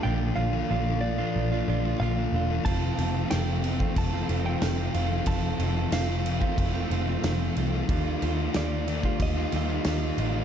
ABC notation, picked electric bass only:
X:1
M:4/4
L:1/8
Q:1/4=92
K:Fmix
V:1 name="Picked electric bass" clef=bass
B,,, B,,, B,,,2 B,,, B,,, B,,, =E,,, | F,,, F,,, F,,,2 F,,, F,,, F,,, F,,, | F,,, F,,, F,,,2 F,,, F,,, F,,, C,, | E,, E,, E,,2 E,, E,, E,, A,,, |]